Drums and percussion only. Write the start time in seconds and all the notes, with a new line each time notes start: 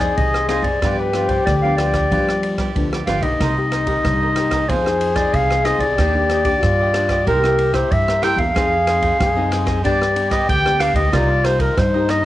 0.00 kick, cross-stick, ride
0.17 kick, ride
0.34 cross-stick
0.49 cross-stick, ride
0.64 kick, ride
0.82 kick, cross-stick, ride
1.13 cross-stick, ride
1.29 kick, ride
1.47 kick, cross-stick, ride
1.78 cross-stick, ride
1.93 kick, cross-stick, ride
2.12 kick, ride
2.29 cross-stick
2.43 ride
2.58 kick, cross-stick, ride
2.76 kick, ride
2.93 cross-stick
3.07 cross-stick, ride
3.22 kick, ride
3.40 kick, cross-stick, ride
3.72 cross-stick, ride
3.87 kick, ride
4.05 kick, cross-stick, ride
4.36 cross-stick, ride
4.51 kick, cross-stick, ride
4.69 kick, ride
4.86 cross-stick
5.01 ride
5.16 kick, cross-stick, ride
5.34 kick, ride
5.51 cross-stick
5.65 cross-stick, ride
5.80 kick, ride
5.98 kick, cross-stick, ride
6.30 cross-stick, ride
6.45 kick, ride
6.63 kick, cross-stick, ride
6.94 cross-stick, ride
7.09 kick, cross-stick, ride
7.27 kick, ride
7.44 cross-stick
7.59 ride
7.74 kick, cross-stick, ride
7.91 kick, ride
8.08 cross-stick
8.23 cross-stick, ride
8.38 kick, ride
8.56 kick, cross-stick, ride
8.87 cross-stick, ride
9.02 kick, ride
9.20 kick, cross-stick, ride
9.52 cross-stick, ride
9.67 kick, cross-stick, ride
9.85 kick, ride
10.02 cross-stick
10.16 ride
10.31 kick, cross-stick, ride
10.49 kick, ride
10.66 cross-stick
10.80 cross-stick, ride
10.95 kick, ride
11.13 kick, cross-stick, ride
11.45 cross-stick, ride
11.60 kick, ride
11.78 kick, cross-stick, ride
12.09 cross-stick, ride